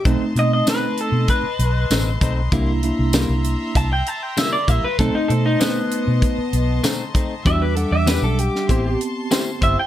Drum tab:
HH |x-x-x-x-x-x-x-x-|x-x-x-x-x-x-x-x-|x-x-x-x-x-x-x-x-|x-x-x-x-x-x-x-x-|
TB |----x-------x---|----x-------x---|----x-------x---|----x-------x---|
SD |----o-------o---|----o-------o---|----o-------o---|----o--o----o---|
BD |o-------o-----o-|o-------o-----o-|o-------o-----o-|o-------o-----o-|